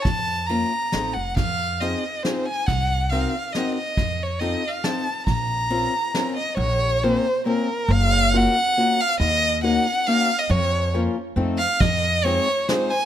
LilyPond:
<<
  \new Staff \with { instrumentName = "Violin" } { \time 3/4 \key bes \minor \tempo 4 = 138 a''4 bes''4. ges''8 | f''4 ees''4 c''8 aes''8 | ges''4 f''4 ees''8 ees''8~ | \tuplet 3/2 { ees''4 des''8 ees''4 f''8 } a''4 |
bes''2~ bes''8 ees''8 | des''4 c''4 bes'4 | f''4 ges''4. f''8 | ees''4 ges''4 f''8. ees''16 |
des''4 r4. f''8 | ees''4 des''4 c''8 aes''8 | }
  \new Staff \with { instrumentName = "Steel-string acoustic guitar" } { \time 3/4 \key bes \minor r4 <bes des' f' bes'>8 r8 <c' ees' f' a'>8 r8 | r4 <c' ees' f' aes'>8 r8 <c' ees' f' aes'>8 r8 | r4 <c' ees' ges' bes'>8 r8 <c' ees' ges' bes'>8 r8 | r4 <c' ees' f' a'>8 r8 <c' ees' f' a'>8 r8 |
r4 <c' des' f' bes'>8 r8 <c' des' f' bes'>8 r8 | r4 <bes c' des' f' bes'>8 r8 <bes c' des' f' bes'>8 r8 | r4 <bes des' f' ges' bes'>8 r8 <bes des' f' ges' bes'>8 r8 | r4 <bes des' ees' ges' bes'>8 r8 <bes des' ees' ges' bes'>8 r8 |
r4 <f bes des' f' bes'>8 r8 <a c' ees' f' a'>8 r8 | r4 <aes c' ees' f' aes'>8 r8 <aes c' ees' f' aes'>8 r8 | }
  \new Staff \with { instrumentName = "Upright bass" } { \clef bass \time 3/4 \key bes \minor f,2 a,,8 f,,8 | f,2 r4 | c,2 r4 | f,2 r4 |
bes,,2 r4 | bes,,2 r4 | ges,,2 r4 | ees,2 r4 |
f,2 f,4 | f,2 r4 | }
  \new DrumStaff \with { instrumentName = "Drums" } \drummode { \time 3/4 <bd cymr>4 cymr4 <cymr sn>4 | <bd cymr>4 cymr4 <cymr sn>4 | <bd cymr>4 cymr4 <cymr sn>4 | <bd cymr>4 cymr4 <cymr sn>4 |
<bd cymr>4 cymr4 <cymr sn>4 | r4 r4 r4 | r4 r4 r4 | r4 r4 r4 |
r4 r4 r4 | <bd cymr>4 cymr4 <cymr sn>4 | }
>>